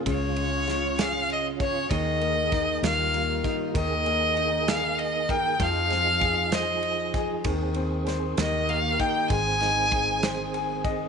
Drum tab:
RD |xxxxxx|xxxxxx|xxxxxx|xxxxxx|
SD |--oo--|---o--|---o--|-o-o--|
BD |o----o|o-o--o|o----o|o-o--o|

RD |xxxxxx|xxxxxx|
SD |--oo--|-o-o--|
BD |o----o|o-o--o|